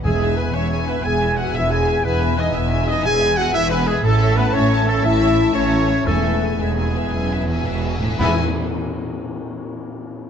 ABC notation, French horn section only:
X:1
M:12/8
L:1/8
Q:3/8=119
K:E
V:1 name="French horn section"
G,2 B, C2 B, G2 F E G2 | B,2 D E2 D G2 F E B, G, | A,2 B, C2 A, E3 C3 | A,3 G,6 z3 |
E z8 z3 |]